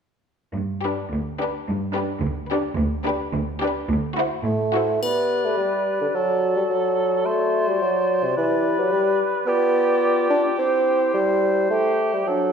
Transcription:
0.55 G2
0.83 D4 G4 B4
1.12 D2
1.40 D4 G4 B4
1.67 G2
1.95 D4 G4 B4
2.22 D2
2.51 D4 G4 B4
2.78 D2
3.06 D4 G4 B4
3.33 D2
3.61 D4 G4 B4
3.90 D2
4.17 E4 F#4 C5
4.45 A2 A3
4.75 E4 F#4 C5
5.03 B3 G4 B4 D5, triangle
5.45 A3
5.58 G3
6.01 D3
6.15 F#3 F#4 A4
6.57 G3
6.70 F#3
7.25 A3 C5 D5
7.68 G3
7.82 F#3
8.24 C3
8.36 E3 G4 B4
8.79 F#3
8.92 G3
9.46 B3 F4 G4 D5
10.30 D4
10.58 C4 E4 C5
11.14 G3
11.70 A3 G4
12.14 G3
12.27 F#3 D4 A4

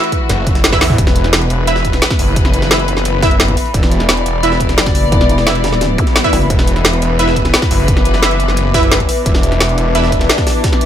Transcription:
Already playing: E3 A3 E4 F#4 B4 E5 B5
0.04 closed hi-hat
0.12 kick, closed hi-hat
0.29 F#1, snare, closed hi-hat
0.47 kick, closed hi-hat
0.55 snare, closed hi-hat
0.64 snare, closed hi-hat
0.73 E4 B4 E5, kick, snare, closed hi-hat
0.81 E2, snare, closed hi-hat, open hi-hat
0.90 snare, mid tom
0.98 E1 E3 B3 E4 B4, kick, closed hi-hat
1.07 snare
1.16 closed hi-hat
1.24 snare, closed hi-hat
1.33 B4, snare, closed hi-hat
1.42 closed hi-hat
1.50 E1, closed hi-hat
1.67 E4 B4 E5, closed hi-hat
1.76 snare
1.85 kick, closed hi-hat
1.93 snare, closed hi-hat
1.97 B5
2.02 snare, closed hi-hat
2.10 kick, snare, closed hi-hat
2.19 F#1, closed hi-hat, open hi-hat
2.36 kick, closed hi-hat
2.45 snare
2.54 closed hi-hat
2.62 snare
2.71 E4 B4 E5, snare, closed hi-hat
2.79 closed hi-hat
2.88 closed hi-hat
2.97 snare
3.05 closed hi-hat
3.23 E4 B4 E5, kick, snare, closed hi-hat
3.31 closed hi-hat
3.40 snare, closed hi-hat
3.48 kick, closed hi-hat
3.57 closed hi-hat, open hi-hat
3.66 closed hi-hat
3.74 E1 D5, kick, closed hi-hat
3.83 snare
3.92 closed hi-hat
4.00 snare, closed hi-hat
4.09 snare, closed hi-hat
4.17 closed hi-hat
4.26 E1, closed hi-hat
4.43 E4 B4 E5, closed hi-hat
4.52 snare
4.60 kick, closed hi-hat
4.69 snare, closed hi-hat
4.78 F#1, snare, closed hi-hat
4.86 kick, snare, closed hi-hat
4.95 closed hi-hat, open hi-hat
5.12 E1, kick, closed hi-hat
5.21 snare
5.29 closed hi-hat
5.38 snare
5.47 E4 B4 E5, snare, closed hi-hat
5.55 closed hi-hat
5.64 snare, closed hi-hat
5.72 D#1, snare
5.81 snare, closed hi-hat
5.98 kick, closed hi-hat, zap
6.07 snare, closed hi-hat
6.16 snare, closed hi-hat
6.24 E4 B4 E5, kick, closed hi-hat
6.33 F#1, closed hi-hat, open hi-hat
6.42 closed hi-hat
6.50 E1 B4, kick, closed hi-hat
6.59 snare
6.67 closed hi-hat
6.76 snare, closed hi-hat
6.85 snare, closed hi-hat
6.93 closed hi-hat
7.02 E1, closed hi-hat
7.19 E4 B4 E5, closed hi-hat
7.28 snare
7.36 kick, closed hi-hat
7.45 snare, closed hi-hat
7.49 D6
7.54 snare, closed hi-hat
7.62 kick, snare, closed hi-hat
7.71 F#1, closed hi-hat, open hi-hat
7.88 kick, closed hi-hat
7.97 snare
8.05 closed hi-hat
8.14 snare
8.23 E4 B4 E5, snare, closed hi-hat
8.31 closed hi-hat
8.40 closed hi-hat
8.48 snare
8.57 closed hi-hat
8.74 E4 B4 E5, kick, snare, closed hi-hat
8.83 closed hi-hat
8.92 snare, closed hi-hat
9.00 kick, closed hi-hat
9.09 closed hi-hat, open hi-hat
9.17 closed hi-hat
9.26 E1 D4, kick, closed hi-hat
9.35 snare
9.43 closed hi-hat
9.52 snare, closed hi-hat
9.60 snare, closed hi-hat
9.69 closed hi-hat
9.78 E1, closed hi-hat
9.95 E4 B4 E5, closed hi-hat
10.04 snare
10.12 kick, closed hi-hat
10.21 snare, closed hi-hat
10.29 snare, closed hi-hat
10.38 kick, snare, closed hi-hat
10.47 snare, closed hi-hat, open hi-hat
10.64 kick, snare, closed hi-hat
10.73 snare
10.81 closed hi-hat

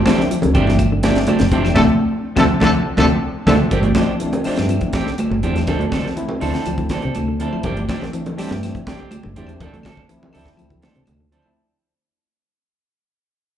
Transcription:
Already playing: F3
0.06 F3 A3 C4 D4 G4, snare, closed hi-hat, high conga, claves
0.18 snare, low conga
0.31 F3, closed hi-hat, high conga
0.42 D2, closed hi-hat, low conga
0.54 G1 F3 A3 C4 D4 G4, kick, closed hi-hat, claves
0.67 E3, snare, high conga
0.79 kick, closed hi-hat, high conga, claves
0.92 D3
1.03 F3 A3 C4 D4 G4, snare, closed hi-hat, high conga
1.15 snare, closed hi-hat
1.27 F1 D3 F3 C4 D4 G4, closed hi-hat, high conga, claves
1.39 F1, snare, closed hi-hat
1.51 E3 F3 A3 C4 D4 G4, kick, closed hi-hat
1.64 F3, snare, claves
1.75 D2 C3 D3 F3 A3 C4 D4 A4, kick, snare, high conga, claves
2.36 D2 C3 D3 F3 A3 C4 D4 A4, kick, snare, high conga, claves
2.60 D2 C3 D3 F3 A3 C4 D4, kick, snare, high conga, claves
2.64 A4
2.97 D2 C3 D3 F3 A3 C4 D4 A4, kick, snare, high conga, claves
3.47 D2 C3 D3 F3 A3 C4 D4 A4, kick, snare, high conga, claves
3.71 G1 E3 F3 C4 D4 G4, kick, closed hi-hat, high conga, low conga
3.83 closed hi-hat, high conga
3.95 F3 C4 D4 G4, kick, snare, closed hi-hat, high conga, claves
4.20 E3 F3 A3 C4 D4, closed hi-hat, high conga
4.33 closed hi-hat, low conga
4.44 F3 A3 C4 D4 G4, muted fingered electric bass stroke, open hi-hat, claves
4.57 G2, snare, closed hi-hat
4.69 F3, closed hi-hat, high conga, claves
4.81 E3, kick, closed hi-hat
4.93 F3 C4 D4 G4, kick, snare, closed hi-hat, high conga
5.07 D3, snare
5.18 closed hi-hat, high conga, claves
5.31 G1 D3, high conga
5.43 E2 F3 A3 C4 D4 G4, closed hi-hat
5.55 F3 A3 C4 D4, snare, closed hi-hat, claves
5.67 D2 D3 F3 C4 D4 A4, kick, snare, closed hi-hat, high conga, low conga
5.79 D3, closed hi-hat, high conga
5.91 F3 C4 D4 A4, kick, snare, closed hi-hat, high conga, claves
6.04 snare, low conga
6.16 E3 F3 A3 C4 E4, closed hi-hat, high conga
6.29 low conga
6.40 D2 F3 A3 C4 D4 E4 A4, open hi-hat, claves
6.54 C4 D4 A4, snare, closed hi-hat
6.66 D2 F3, closed hi-hat, high conga, claves
6.78 D2 E3, kick, closed hi-hat
6.89 F3 C4 D4 A4, kick, snare, closed hi-hat, high conga
7.02 C3 D3 C4 D4 A4, closed hi-hat
7.15 D2, closed hi-hat, high conga, claves
7.28 D3
7.39 F3 A3 C4 D4 E4 A4, closed hi-hat
7.53 F3 A3 C4 E4, muted fingered electric bass stroke, claves
7.63 G1 E3 F3 C4 D4 G4, kick, closed hi-hat, high conga, low conga
7.77 closed hi-hat, high conga
7.89 F3 C4 D4 G4, kick, snare, closed hi-hat, high conga, claves
8.02 snare, low conga
8.13 E3 F3 A3 C4 D4, closed hi-hat, high conga
8.26 closed hi-hat, low conga
8.38 F3 G3 A3 C4 D4 G4, muted fingered electric bass stroke, snare, open hi-hat, claves
8.50 G2, snare, closed hi-hat, high conga
8.63 F3, snare, closed hi-hat, high conga, claves
8.75 E3, kick, closed hi-hat
8.87 F3 C4 D4 G4, kick, snare, closed hi-hat, high conga
9.00 D3 C4 D4 G4
9.11 closed hi-hat, high conga, claves
9.23 G1 D3, high conga
9.36 E2 F3 A3 C4 D4 G4, closed hi-hat
9.47 F3 A3 C4 D4, closed hi-hat, claves
9.60 D2 E3 F3 C4 D4 A4, kick, closed hi-hat, high conga, low conga
9.74 D3, closed hi-hat, high conga
9.83 F3 C4 D4 A4, kick, snare, closed hi-hat, high conga, claves
9.97 kick
10.09 E3 F3 A3 C4 E4, closed hi-hat
10.23 low conga
10.33 D2 D3 F3 A3 C4 D4 E4 A4, open hi-hat, claves
10.46 kick, snare
10.57 D2 F3, closed hi-hat, high conga, claves
10.70 D2 E3, kick, closed hi-hat
10.82 F3 C4 D4 A4, snare, closed hi-hat, high conga
10.95 C3 D3, closed hi-hat
11.06 D2, closed hi-hat, high conga, claves
11.21 D3
11.31 F3 A3 C4 D4 E4 A4, closed hi-hat
11.42 F3 A3 C4 E4, muted clean electric guitar stroke, muted fingered electric bass stroke, claves

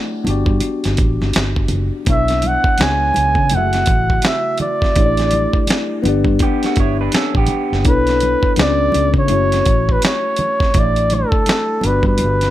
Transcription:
Already playing: A3 D4 E4 G4 C#5 D5 F#5
0.23 G1 B3 D4 F#4, closed hi-hat, high conga
0.29 G4 D5
0.46 G2, kick, low conga
0.60 closed hi-hat, muted conga, high conga
0.84 G1, snare, closed hi-hat
0.97 A1, kick, closed hi-hat, muted conga
1.21 G1, snare, high conga
1.33 G1, snare, closed hi-hat
1.56 kick
1.68 F#1, closed hi-hat, high conga, low conga
2.05 B1 B3 D4 E4, kick, closed hi-hat, muted conga
2.09 A4 C#5 E5
2.28 snare, closed hi-hat
2.42 closed hi-hat, muted conga, high conga
2.47 F#5
2.64 kick
2.78 C#2 B3 D4 F4 G#4, snare, closed hi-hat, high conga
2.82 C#5 G#5
3.14 C#2, closed hi-hat, high conga
3.35 C#3, kick, low conga
3.49 F#1 C#3 A3 E4, closed hi-hat, muted conga, high conga
3.55 F#4 E5 F#5
3.73 snare, closed hi-hat
3.86 A1, kick, closed hi-hat, muted conga
4.10 kick
4.22 snare, closed hi-hat
4.26 E5
4.58 closed hi-hat, muted conga, high conga, low conga
4.62 D5
4.82 kick, snare
4.95 A1 A3 D4 E4 G4, kick, closed hi-hat, muted conga
5.00 C#5
5.06 D5
5.17 snare, closed hi-hat
5.31 closed hi-hat, muted conga, high conga
5.53 kick
5.67 snare, closed hi-hat, muted conga, high conga
6.02 G1 B3 D4 F#5, closed hi-hat, muted conga, high conga
6.07 G4 D5
6.25 G2, kick, low conga
6.39 G4, kick, closed hi-hat, muted conga, high conga
6.43 B3
6.63 A3 F#4, snare, closed hi-hat
6.76 G1 E4, kick, closed hi-hat, muted conga
6.80 C#5
7.01 D4 B4
7.12 C#4 A4, muted fingered electric bass stroke, snare, closed hi-hat, muted conga
7.35 A1 B3 G4, kick
7.47 closed hi-hat, muted conga, high conga, low conga
7.72 F#1, snare
7.84 B1 B3 D4 E4 A4 B4 C#5, kick, closed hi-hat, muted conga
8.07 snare, closed hi-hat
8.20 closed hi-hat, high conga
8.43 kick
8.56 C#2 B3 D4 F4 G#4 C5, snare, closed hi-hat, muted conga, high conga
8.61 D5
8.66 C#4
8.92 C#2, closed hi-hat, muted conga, high conga
9.14 C#3, kick, low conga
9.19 C#5
9.26 A3 C#4 E4, closed hi-hat, high conga
9.30 F#1 F#4 C#5
9.52 snare, closed hi-hat
9.65 A1, kick, closed hi-hat
9.89 B4, kick
10.02 C#5, snare, closed hi-hat, muted conga
10.36 closed hi-hat, high conga, low conga
10.60 kick, snare
10.74 A1 A3 D4 E4 G4 C#5, kick, closed hi-hat, muted conga, low conga
10.79 D5
10.84 D5
10.96 closed hi-hat
11.10 closed hi-hat, muted conga, high conga
11.14 A4
11.32 kick
11.46 snare, closed hi-hat, high conga
11.81 G1 B3 D4 F#4, closed hi-hat, high conga
11.86 G4 B4 D5
12.03 G2, kick, low conga
12.07 B4
12.18 G1, closed hi-hat, high conga
12.41 snare, closed hi-hat

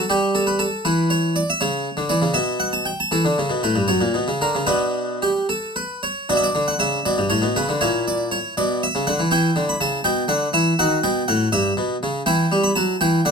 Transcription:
0.00 A4
0.10 G3 G4
0.35 A4
0.47 B4
0.59 A4
0.85 E3 B4
1.10 C#5
1.36 D5
1.50 E5
1.61 C#3 C#5
1.97 D3
2.09 E3 D5
2.22 C#3
2.34 B2 E5
2.60 F#5
2.73 A5
2.85 G5
3.00 A5
3.11 E3 A4
3.25 D3
3.38 C#3
3.50 B2
3.63 A2 B4
3.76 G2
3.88 F#2 C#5
4.01 A#2
4.14 B2
4.28 C#3
4.42 D3 A#4
4.55 C#3
4.67 B2 B3 D4 B4
5.22 G4
5.49 A4
5.76 B4
6.03 C#5
6.29 B2 D4 D5
6.37 E5
6.44 D5
6.55 D3
6.68 F#5
6.79 C#3 E5
7.06 B2 D5
7.18 G2
7.30 A2 C#5
7.42 B2
7.56 C#3 B4
7.69 D3
7.81 A#2 E4 C#5
8.08 D5
8.31 C#5
8.57 B2 D5
8.83 E5
8.95 C#3
9.07 D3 F#5
9.19 E3
9.31 E3 E4 G5
9.56 D3
9.69 B5
9.81 C#3 A5
10.04 B2 G5
10.28 D3 F#5
10.53 E3 E5
10.79 D#3 F#4 F#5
11.04 B2 G5
11.28 A2 F#5
11.52 G2 E5
11.77 B2
12.03 C#3
12.26 E3 E4 G5
12.52 G3
12.64 B5
12.76 F#3 A5
13.01 E3 G5
13.25 D3 F#5

